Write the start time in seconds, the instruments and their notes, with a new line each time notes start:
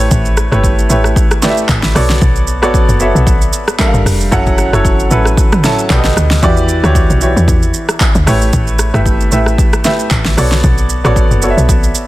Already playing: grand piano A3 E4 G4 B4 C#5
0.00 shaker
0.11 log drum bass A1, kick, shaker
0.25 shaker
0.37 cross-stick, shaker
0.51 log drum bass G1, grand piano A3 E4 G4 B4 C#5, cross-stick, shaker
0.64 kick, shaker
0.79 shaker
0.89 log drum bass A1, grand piano A3 E4 G4 B4 C#5, shaker
1.04 cross-stick, shaker
1.16 kick, shaker
1.31 cross-stick, shaker
1.42 grand piano A3 E4 G4 B4 D5, snare, shaker
1.50 grand piano E5
1.57 shaker
1.69 log drum bass A1, kick, clap, shaker
1.83 snare, shaker
1.95 log drum bass B1, grand piano B3 F#4 A4 C#5 D5, cross-stick, open hi-hat, shaker
2.10 snare, shaker
2.22 log drum bass B1, kick, shaker
2.36 shaker
2.47 shaker
2.62 log drum bass A1, grand piano B3 F#4 A4 C#5 D5, cross-stick, shaker
2.74 kick, shaker
2.89 log drum bass F#1, shaker
3.00 grand piano B3 F#4 A4 C#5 E5, shaker
3.15 log drum bass B1, shaker
3.27 kick, shaker
3.41 shaker
3.53 shaker
3.68 cross-stick, shaker
3.79 grand piano G3 D4 A4 A#4 E5, kick, clap, shaker
3.87 grand piano F5
3.94 log drum bass G1, shaker
4.06 log drum bass F1, cross-stick, open hi-hat, shaker
4.21 shaker
4.31 log drum bass F#1, grand piano F#3 C#4 E4 A4 F#5, kick, shaker
4.46 kick, shaker
4.58 cross-stick, shaker
4.72 log drum bass F#1, grand piano F#3 C#4 E4 A4 C#5, cross-stick, shaker
4.85 kick, shaker
5.00 shaker
5.10 log drum bass A1, grand piano F#3 C#4 E4 A4 B4, shaker
5.25 cross-stick, shaker
5.37 kick, shaker
5.52 cross-stick, mid tom, shaker
5.63 grand piano F#3 C#4 E4 A4 A5, snare, shaker
5.79 shaker
5.89 log drum bass B1, grand piano B2 B3 G4 A4 D5, kick, clap, shaker
5.97 grand piano D#5
6.04 snare, shaker
6.16 log drum bass D2, cross-stick, shaker
6.31 snare, shaker
6.42 log drum bass E2, grand piano E3 E4 F#4 G4 D5, kick, shaker
6.57 shaker
6.69 shaker
6.83 log drum bass D2, grand piano E3 E4 F#4 G4 C#5, cross-stick, shaker
6.95 kick, shaker
7.10 log drum bass B1, shaker
7.21 grand piano E3 E4 F#4 G4 C#5, shaker
7.36 log drum bass E2, shaker
7.48 kick, shaker
7.62 shaker
7.74 shaker
7.89 cross-stick, shaker
8.00 kick, clap, shaker
8.15 log drum bass D2, shaker
8.26 log drum bass A1, grand piano A3 E4 G4 B4 C#5, cross-stick, open hi-hat, shaker
8.42 shaker
8.53 log drum bass A1, kick, shaker
8.67 shaker
8.79 cross-stick, shaker
8.94 log drum bass G1, grand piano A3 E4 G4 B4 E5, cross-stick, shaker
9.06 kick, shaker
9.21 shaker
9.32 log drum bass A1, grand piano A3 E4 G4 B4 E5, shaker
9.46 cross-stick, shaker
9.58 kick, shaker
9.73 cross-stick, shaker
9.84 grand piano A3 E4 G4 B4 E5, snare, shaker
9.99 shaker
10.11 log drum bass A1, kick, clap, shaker
10.25 snare, shaker
10.37 log drum bass B1, grand piano B3 F#4 A4 C#5 D5, cross-stick, open hi-hat, shaker
10.52 snare, shaker
10.64 log drum bass B1, kick, shaker
10.78 shaker
10.90 shaker
11.04 log drum bass A1, grand piano B3 F#4 A4 C#5 D5, cross-stick, shaker
11.16 kick, shaker
11.31 log drum bass F#1, shaker
11.42 grand piano B3 F#4 A4 C#5 D5, shaker
11.50 grand piano E5
11.57 log drum bass B1, shaker
11.69 kick, shaker
11.83 shaker
11.95 shaker